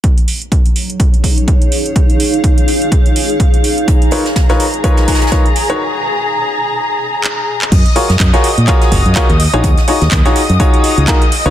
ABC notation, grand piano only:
X:1
M:4/4
L:1/16
Q:"Swing 16ths" 1/4=125
K:Ebm
V:1 name="Grand piano"
z16 | z16 | z2 [EFBcd] z2 [EFBcd] z2 [EFBcd]4 [EFBcd] z2 [^D^F^A=B^c] | z16 |
z2 [FGABd] z2 [FGABd] z2 [FGABd]4 [FGABd] z2 [EFGAd] | z2 [EFGAd] z2 [EFGAd] z2 [EFGAd]4 [EFGAB] z2 [EFBcd] |]